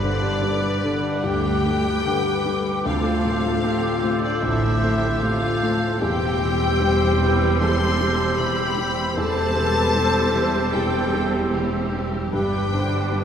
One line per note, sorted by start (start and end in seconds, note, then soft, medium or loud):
0.00 0.29 G1 medium
0.00 0.29 G2 medium
0.00 1.20 G2 medium
0.00 0.22 D3 medium
0.00 0.67 D3 soft
0.00 1.24 D4 medium
0.00 2.53 G4 medium
0.00 2.53 B4 medium
0.00 0.42 C5 medium
0.00 1.24 D5 loud
0.00 5.75 D6 medium
0.22 0.42 G3 soft
0.42 0.62 D3 medium
0.42 1.08 G3 soft
0.42 1.24 B4 medium
0.62 0.83 G3 medium
0.83 1.03 D3 medium
0.83 1.49 D3 soft
1.04 1.24 G3 soft
1.24 1.92 D2 medium
1.24 2.80 G2 medium
1.24 1.43 D3 medium
1.24 2.05 G4 medium
1.24 2.67 G4 medium
1.24 2.85 G5 loud
1.45 1.65 G3 medium
1.65 1.85 D3 medium
1.65 2.29 G3 soft
1.86 2.05 G3 medium
2.05 2.25 D3 medium
2.05 2.69 D3 medium
2.05 2.85 B4 medium
2.26 2.45 G3 medium
2.46 2.65 D3 medium
2.46 2.85 G3 soft
2.65 2.85 G3 medium
2.83 3.50 D2 medium
2.83 4.39 D2 medium
2.83 3.51 D2 medium
2.83 3.03 C3 medium
2.83 5.98 C4 medium
2.83 4.20 F4 medium
2.83 3.63 A4 medium
2.83 5.98 A4 medium
2.83 5.97 C5 medium
2.83 4.20 F5 loud
3.05 3.24 D3 medium
3.25 3.87 A2 soft
3.25 3.44 F3 medium
3.45 3.64 A3 medium
3.63 3.84 F3 medium
3.63 4.27 A3 soft
3.63 4.02 G4 medium
3.82 4.02 D3 medium
4.03 4.67 A2 soft
4.03 4.23 C3 medium
4.03 4.43 F4 medium
4.21 4.43 D3 medium
4.21 4.42 D4 medium
4.21 4.43 D5 medium
4.41 5.09 A1 medium
4.41 5.97 D2 medium
4.41 5.09 A2 medium
4.41 4.62 F3 medium
4.41 5.22 E4 medium
4.41 4.82 A4 medium
4.41 5.21 E5 medium
4.63 4.83 A3 medium
4.83 5.03 F3 medium
4.83 5.47 A3 medium
4.83 5.22 G4 medium
5.04 5.23 D3 medium
5.20 5.86 A2 medium
5.20 5.42 C3 medium
5.20 6.01 F4 medium
5.20 5.61 F4 medium
5.20 6.00 F5 loud
5.43 5.62 D3 medium
5.62 5.82 F3 medium
5.62 6.02 A3 medium
5.62 6.01 A4 medium
5.80 6.00 A3 medium
6.00 9.12 E1 medium
6.00 7.56 E2 medium
6.00 9.12 E2 medium
6.00 9.12 G3 medium
6.00 9.12 C4 medium
6.00 9.01 G4 medium
6.00 7.57 G4 medium
6.00 6.79 G4 medium
6.00 9.12 C5 medium
6.00 7.59 G5 loud
6.00 9.12 E6 medium
6.41 7.03 E3 soft
6.80 7.44 G3 medium
6.80 7.20 C5 medium
7.21 7.84 E3 soft
7.21 7.60 B4 medium
7.59 9.12 E2 medium
7.59 8.39 A4 medium
7.59 8.34 C5 medium
7.59 8.37 C6 loud
8.01 8.62 G3 medium
8.35 9.17 G4 medium
8.35 9.15 C5 medium
8.35 9.16 B5 loud
8.40 9.01 E3 medium
8.77 9.39 G3 medium
9.15 12.28 E1 medium
9.15 10.70 E2 medium
9.15 12.29 E2 medium
9.15 12.29 G3 medium
9.15 12.29 C4 medium
9.15 12.01 G4 medium
9.15 10.57 A4 medium
9.15 12.00 C5 medium
9.15 9.55 C5 medium
9.15 10.73 A5 loud
9.15 12.28 E6 medium
9.55 10.18 E3 soft
9.55 9.95 B4 medium
9.94 10.58 G3 medium
9.94 10.73 C5 medium
10.35 10.97 E3 soft
10.73 12.28 E2 medium
10.73 11.51 G4 medium
10.73 11.51 A4 medium
10.73 11.52 G5 medium
11.14 11.77 G3 medium
11.52 12.16 E3 medium
11.52 12.32 G4 medium
11.92 12.32 G3 soft
12.31 13.24 G1 medium
12.31 13.24 G2 medium
12.31 13.24 G3 medium
12.31 13.24 D4 medium
12.31 13.24 G4 medium
12.31 12.72 B4 medium
12.31 13.24 B4 medium
12.31 13.24 G5 loud
12.31 13.24 D6 medium
12.73 13.24 D3 soft
12.73 13.12 C5 medium
13.12 13.24 G3 soft
13.12 13.24 B4 medium